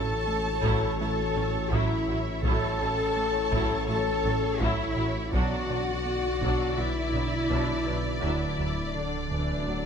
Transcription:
0.00 2.44 A1 medium
0.00 0.13 A2 medium
0.00 2.43 E3 medium
0.00 0.13 C#4 medium
0.00 2.43 C#4 medium
0.00 2.41 F#4 medium
0.00 0.95 A4 medium
0.00 0.96 A4 medium
0.00 2.41 A4 medium
0.00 2.41 C#5 medium
0.00 0.96 A5 medium
0.28 0.49 A3 medium
0.63 0.72 A1 medium
0.63 0.85 A2 medium
0.63 0.98 F#3 medium
0.63 0.86 A3 medium
0.63 0.98 E4 medium
0.63 taiko medium
0.99 1.08 A1 soft
0.99 1.08 F#3 soft
0.99 1.22 A3 medium
0.99 1.09 E4 soft
0.99 1.22 E4 medium
0.99 1.70 A4 medium
0.99 1.71 A4 medium
0.99 1.71 A5 medium
1.35 1.43 A1 soft
1.35 1.58 A2 medium
1.35 1.45 F#3 soft
1.35 1.58 C#4 medium
1.35 1.45 C#4 soft
1.72 1.80 A1 medium
1.72 1.94 A2 medium
1.72 2.06 F#3 medium
1.72 1.95 A3 medium
1.72 2.44 E4 medium
1.72 2.06 E4 medium
1.72 2.45 E5 medium
1.72 taiko medium
2.08 2.16 A1 soft
2.08 2.30 A2 medium
2.08 2.18 F#3 medium
2.08 2.19 E4 medium
2.08 2.30 F#4 medium
2.43 2.51 A1 medium
2.43 5.36 A1 medium
2.43 2.66 A2 medium
2.43 5.29 E3 medium
2.43 2.79 F#3 medium
2.43 2.66 A3 medium
2.43 5.29 C#4 medium
2.43 2.79 E4 medium
2.43 8.19 F#4 medium
2.43 3.85 A4 medium
2.43 3.86 A4 medium
2.43 5.30 A4 medium
2.43 5.29 C#5 medium
2.43 3.87 A5 medium
2.43 taiko medium
2.79 2.87 A1 soft
2.79 3.02 A2 soft
2.79 2.90 F#3 soft
2.79 3.03 C#4 medium
2.79 2.90 E4 soft
3.17 3.38 A3 medium
3.52 3.60 A1 medium
3.52 3.74 A2 medium
3.52 3.87 F#3 medium
3.52 3.75 A3 medium
3.52 3.87 E4 medium
3.52 taiko medium
3.88 3.96 A1 soft
3.88 3.99 F#3 soft
3.88 4.10 A3 soft
3.88 4.10 E4 medium
3.88 3.98 E4 soft
3.88 4.60 A4 medium
3.88 4.60 A5 medium
4.24 4.32 A1 medium
4.24 4.47 A2 medium
4.24 4.34 F#3 soft
4.24 4.47 C#4 medium
4.24 4.34 C#4 medium
4.59 4.69 A1 medium
4.59 4.82 A2 medium
4.59 4.95 F#3 medium
4.59 4.83 A3 medium
4.59 5.31 E4 medium
4.59 5.34 E4 medium
4.59 4.95 E4 medium
4.59 5.34 E5 medium
4.59 taiko medium
4.97 5.05 A1 medium
4.97 5.19 A2 medium
4.97 5.06 F#3 medium
4.97 5.06 E4 medium
4.97 5.19 F#4 medium
5.33 5.41 B1 medium
5.33 8.25 B1 medium
5.33 5.55 B2 medium
5.33 9.86 D3 medium
5.33 5.67 F#3 medium
5.33 5.55 B3 medium
5.33 9.86 D4 medium
5.33 5.68 D4 medium
5.33 6.78 F#4 medium
5.33 6.75 F#4 medium
5.33 8.23 B4 medium
5.33 9.86 D5 medium
5.33 6.75 F#5 medium
5.33 taiko medium
5.69 5.77 B1 soft
5.69 5.91 B2 medium
5.69 5.80 F#3 soft
5.69 5.91 D4 medium
5.69 5.80 D4 soft
6.05 6.27 B3 medium
6.41 6.49 B1 medium
6.41 6.63 B2 medium
6.41 6.76 F#3 medium
6.41 6.63 B3 medium
6.41 6.76 D4 medium
6.41 taiko medium
6.77 6.85 B1 soft
6.77 6.87 F#3 soft
6.77 7.00 B3 medium
6.77 6.87 D4 soft
6.77 8.05 E4 medium
6.77 8.21 E4 medium
6.77 7.00 F#4 medium
6.77 8.20 E5 medium
7.13 7.21 B1 soft
7.13 7.36 B2 soft
7.13 7.24 F#3 soft
7.13 7.23 B3 soft
7.13 7.36 D4 medium
7.49 7.57 B1 medium
7.49 7.72 B2 medium
7.49 7.84 F#3 medium
7.49 7.72 B3 medium
7.49 7.84 D4 medium
7.49 taiko medium
7.86 7.94 B1 soft
7.86 8.08 B2 medium
7.86 7.95 F#3 soft
7.86 7.95 D4 soft
7.86 8.08 B4 medium
8.21 9.86 D1 medium
8.21 8.29 D2 medium
8.21 8.45 D2 medium
8.21 8.44 D3 medium
8.21 8.56 F#3 medium
8.21 8.56 D4 medium
8.21 8.93 E4 medium
8.21 9.86 F#4 medium
8.21 9.86 A4 medium
8.21 8.93 E5 medium
8.58 8.66 D2 soft
8.58 8.81 D2 soft
8.58 8.81 F#3 soft
8.58 8.67 F#3 soft
8.58 8.67 D4 soft
8.95 9.29 D3 soft
8.95 9.17 D3 medium
8.95 9.86 D4 medium
8.95 9.86 D4 soft
8.95 9.86 D5 soft
9.31 9.39 D2 medium
9.31 9.53 D2 medium
9.31 9.53 D3 medium
9.31 9.66 E3 soft
9.66 9.74 D2 soft
9.66 9.86 D3 soft
9.66 9.86 F#3 soft
9.66 9.86 A3 medium

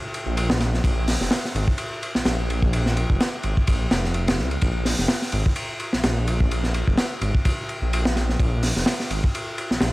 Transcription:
0.14 ride medium
0.26 0.80 A#1 loud
0.37 ride medium
0.50 snare loud
0.60 snare medium
0.60 ride medium
0.74 snare soft
0.84 1.16 A#1 loud
0.84 kick loud
0.84 ride medium
1.08 snare medium
1.08 open hi-hat medium
1.21 1.29 F1 loud
1.21 snare soft
1.31 snare loud
1.31 ride medium
1.45 snare soft
1.55 1.65 G#1 medium
1.55 ride medium
1.68 kick medium
1.78 ride medium
2.03 ride medium
2.15 2.24 A#1 soft
2.15 snare medium
2.25 3.05 A#1 medium
2.25 snare loud
2.25 ride medium
2.50 ride medium
2.62 kick medium
2.73 ride medium
2.86 snare soft
2.97 ride medium
3.10 3.18 F1 loud
3.10 kick medium
3.20 snare loud
3.20 ride medium
3.43 3.54 G#1 loud
3.43 ride medium
3.57 kick medium
3.67 3.87 A#1 medium
3.67 kick loud
3.67 ride medium
3.91 4.39 F1 medium
3.91 snare loud
3.91 ride medium
4.04 snare soft
4.14 ride medium
4.28 snare loud
4.28 ride medium
4.38 4.57 C#2 medium
4.38 snare soft
4.51 ride medium
4.61 4.94 A#1 loud
4.61 kick loud
4.61 ride medium
4.85 snare soft
4.85 open hi-hat medium
4.99 5.07 F1 loud
4.99 snare soft
5.08 snare loud
5.08 ride medium
5.22 snare soft
5.32 5.43 G#1 loud
5.32 ride medium
5.46 kick loud
5.56 ride medium
5.80 ride medium
5.93 6.02 A#1 soft
5.93 snare medium
6.04 6.83 A#1 medium
6.04 snare loud
6.04 ride medium
6.27 ride medium
6.40 kick loud
6.51 ride medium
6.63 snare soft
6.74 ride medium
6.88 6.96 F1 loud
6.88 kick medium
6.98 snare loud
6.98 ride medium
7.21 7.32 G#1 loud
7.21 ride medium
7.35 kick medium
7.45 kick loud
7.45 ride loud
7.69 ride medium
7.82 8.36 A#1 medium
7.93 ride medium
8.05 snare loud
8.16 snare medium
8.16 ride medium
8.29 snare soft
8.40 8.72 A#1 loud
8.40 kick loud
8.40 ride medium
8.63 snare soft
8.63 open hi-hat medium
8.76 8.85 F1 loud
8.76 snare soft
8.86 snare loud
8.86 ride medium
9.00 snare soft
9.10 9.21 G#1 loud
9.10 ride medium
9.24 kick medium
9.35 ride medium
9.58 ride medium
9.71 9.79 A#1 soft
9.71 snare medium
9.81 9.93 A#1 medium
9.81 snare loud
9.81 ride medium

